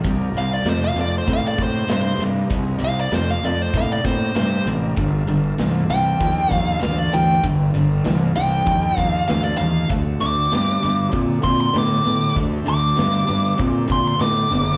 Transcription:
0.03 fingered electric bass C2, distorted electric guitar C3 G3, tonewheel organ D4 D#4 G4 A#4, kick, open hi-hat
0.34 fingered electric bass C2, distorted electric guitar C3 G3, open hi-hat
0.38 lead electric guitar F5
0.53 lead electric guitar D5
0.65 fingered electric bass F2, distorted electric guitar C3 A3, snare, open hi-hat
0.69 lead electric guitar C5
0.84 lead electric guitar F5
0.95 fingered electric bass F2, distorted electric guitar C3 A3, open hi-hat
1.01 lead electric guitar D5
1.18 lead electric guitar C5
1.27 fingered electric bass A2, distorted electric guitar C3 A#3, kick, open hi-hat
1.33 lead electric guitar F5
1.48 lead electric guitar D5
1.58 fingered electric bass A2, distorted electric guitar C3 A#3, kick, open hi-hat
1.63 lead electric guitar C5
1.88 fingered electric bass G2, distorted electric guitar C3 A3, snare, open hi-hat
1.92 lead electric guitar C5
2.18 fingered electric bass G2, distorted electric guitar C3 A3, open hi-hat
2.50 fingered electric bass C2, distorted electric guitar C3 G3, tonewheel organ B3 D#4 E4 G#4, kick, open hi-hat
2.73 tonewheel organ D4 D#4 G4 A#4
2.79 fingered electric bass C2, distorted electric guitar C3 G3, open hi-hat
2.84 lead electric guitar F5
3.00 lead electric guitar D5
3.11 fingered electric bass F2, distorted electric guitar C3 A3, lead electric guitar C5, snare, open hi-hat
3.31 lead electric guitar F5
3.43 fingered electric bass F2, distorted electric guitar C3 A3, lead electric guitar D5, open hi-hat
3.62 lead electric guitar C5
3.74 fingered electric bass A2, distorted electric guitar C3 A#3, lead electric guitar F5, kick, open hi-hat
3.92 lead electric guitar D5
4.05 fingered electric bass A2, distorted electric guitar C3 A#3, lead electric guitar C5, kick, open hi-hat
4.35 fingered electric bass G2, distorted electric guitar C3 A3, lead electric guitar C5, snare, open hi-hat
4.66 fingered electric bass A1, distorted electric guitar C3 A3, open hi-hat
4.97 fingered electric bass G1, distorted electric guitar G2 D3, tonewheel organ A#3 D4 F4 A4, kick, open hi-hat
5.27 fingered electric bass G1, distorted electric guitar G2 D3, open hi-hat
5.58 fingered electric bass C2, distorted electric guitar G2 E3, snare, open hi-hat
5.89 fingered electric bass C2, distorted electric guitar G2 E3, lead electric guitar G5, open hi-hat
6.20 fingered electric bass D#2, distorted electric guitar G2 F3, kick, open hi-hat
6.49 fingered electric bass D#2, distorted electric guitar G2 F3, lead electric guitar F5, kick, open hi-hat
6.80 distorted electric guitar G2 E3, lead electric guitar F5, snare, open hi-hat
6.84 fingered electric bass D2
6.99 lead electric guitar D5
7.12 fingered electric bass D2, distorted electric guitar G2 E3, lead electric guitar G5, open hi-hat
7.43 fingered electric bass G1, distorted electric guitar G2 D3, tonewheel organ D4 F4 A4 A#4, kick, open hi-hat
7.74 fingered electric bass G1, distorted electric guitar G2 D3, open hi-hat
8.05 fingered electric bass C2, distorted electric guitar G2 E3, snare, open hi-hat
8.36 fingered electric bass C2, distorted electric guitar G2 E3, lead electric guitar G5, open hi-hat
8.66 fingered electric bass D#2, distorted electric guitar G2 F3, kick, open hi-hat
8.97 fingered electric bass D#2, distorted electric guitar G2 F3, lead electric guitar F5, kick, open hi-hat
9.28 fingered electric bass D2, distorted electric guitar G2 E3, lead electric guitar F5, snare, open hi-hat
9.44 lead electric guitar D5
9.58 fingered electric bass D#2, distorted electric guitar G2 E3, lead electric guitar F5, open hi-hat
9.89 fingered electric bass D2, distorted electric guitar D3 A3, tonewheel organ C4 D4 F#4 A4, kick, open hi-hat
10.20 fingered electric bass D2, distorted electric guitar D3 A3, lead electric guitar D6, open hi-hat
10.52 fingered electric bass G2, distorted electric guitar D3 B3, snare, open hi-hat
10.82 fingered electric bass G2, distorted electric guitar D3 B3, open hi-hat
11.12 fingered electric bass A#2, distorted electric guitar D3 C4, kick, open hi-hat
11.42 fingered electric bass A#2, distorted electric guitar D3 C4, lead electric guitar C6, kick, open hi-hat
11.61 lead electric guitar C6
11.73 fingered electric bass A2, distorted electric guitar D3 B3, snare, open hi-hat
11.78 lead electric guitar D6
12.05 fingered electric bass A2, distorted electric guitar D3 B3, open hi-hat
12.36 fingered electric bass D2, distorted electric guitar D3 A3, tonewheel organ D4 F#4 A4 C5, kick, open hi-hat
12.66 fingered electric bass D2, distorted electric guitar D3 A3, lead electric guitar D6, open hi-hat
12.97 fingered electric bass G2, distorted electric guitar D3 B3, snare, open hi-hat
13.28 fingered electric bass G2, distorted electric guitar D3 B3, open hi-hat
13.58 fingered electric bass A#2, distorted electric guitar D3 C4, kick, open hi-hat
13.88 fingered electric bass A#2, distorted electric guitar D3 C4, kick, open hi-hat
13.92 lead electric guitar C6
14.08 lead electric guitar C6
14.20 fingered electric bass A2, distorted electric guitar D3 B3, lead electric guitar D6, snare, open hi-hat
14.51 fingered electric bass F#1, distorted electric guitar D3 B3, open hi-hat

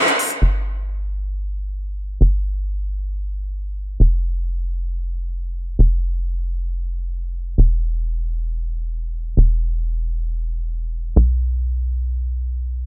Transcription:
0.08 closed hi-hat
0.19 open hi-hat
0.30 closed hi-hat
0.42 analog synth bass G1
2.21 analog synth bass G1
4.00 analog synth bass F1
5.79 analog synth bass F1
7.58 analog synth bass E1
9.37 analog synth bass E1
11.16 analog synth bass B1

